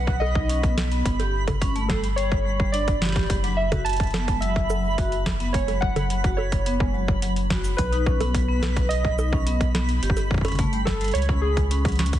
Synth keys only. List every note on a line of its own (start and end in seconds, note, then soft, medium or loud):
0.00 0.22 F#5 loud
0.20 0.73 D#5 loud
1.88 2.01 A4 medium
2.16 2.75 C#5 loud
2.72 3.12 D5 loud
3.57 3.86 E5 medium
3.85 4.37 A5 loud
4.41 5.21 E5 medium
5.53 5.82 C#5 medium
5.81 6.39 F#5 loud
6.37 7.46 C#5 medium
7.77 8.93 B4 medium
8.89 9.70 D#5 loud
10.85 11.12 A4 medium
11.14 11.26 C#5 loud
11.42 11.94 G#4 medium